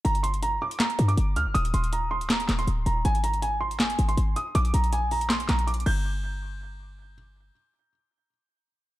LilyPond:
<<
  \new Staff \with { instrumentName = "Grand piano" } { \time 4/4 \key g \phrygian \tempo 4 = 160 bes''8 c'''8 bes''8 d'''8 bes''8. d'''8. f'''8 | ees'''8 c'''8 bes''8 c'''8 bes''8. c'''8. bes''8 | aes''8 bes''8 aes''8 c'''8 aes''8. c'''8. ees'''8 | d'''8 bes''8 aes''8 bes''8 c'''8 bes''8 d'''8 g'''8~ |
g'''2. r4 | r1 | }
  \new Staff \with { instrumentName = "808-style bass" } { \clef bass \time 4/4 \key g \phrygian g,,4. r4 g,8 g,,8 d,16 g,,16 | ees,,8 ees,,4~ ees,,16 d,,16. ees,,16. ees,,8 d,,8 ees,,8 | aes,,2~ aes,,8 aes,,8 aes,,8 r8 | bes,,8 bes,,2 bes,,4 g,,8~ |
g,,1 | r1 | }
  \new DrumStaff \with { instrumentName = "Drums" } \drummode { \time 4/4 hh16 hh16 hh16 hh16 hh8. hh16 <hc hh sn>16 hh16 hh16 hh16 hh8 hh8 | hh16 hh16 hh16 hh16 hh8. hh16 <hc hh sn>16 hh16 <hc hh sn>16 hh16 hh8 hh8 | hh16 hh16 hh16 hh16 hh8. hh16 <hc hh sn>16 hh16 hh16 hh16 hh8 hh8 | hh16 hh16 hh16 hh16 hh8 hho16 hh16 <hc hh sn>16 hh16 <hc hh sn>16 hh16 \tuplet 3/2 { hh16 hh16 hh16 cymc16 r16 r16 } |
r4 r4 r4 r4 | r4 r4 r4 r4 | }
>>